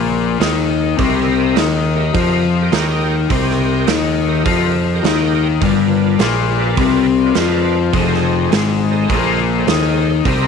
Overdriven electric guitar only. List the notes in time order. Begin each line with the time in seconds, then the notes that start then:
Already playing: A#2 A#3
0.40 D#3 D#4
0.97 C3 C4
1.56 D#3 D#4
2.14 F3 F4
2.72 D#3 D#4
3.29 C3 C4
3.86 D#3 D#4
4.45 F3 F4
5.03 D#3 D#4
5.61 G2 G3
6.18 A#2 A#3
6.77 C3 C4
7.35 F3 F4
7.93 F2 F3
8.51 G#2 G#3
9.09 A#2 A#3
9.67 D#3 D#4
10.25 C3 C4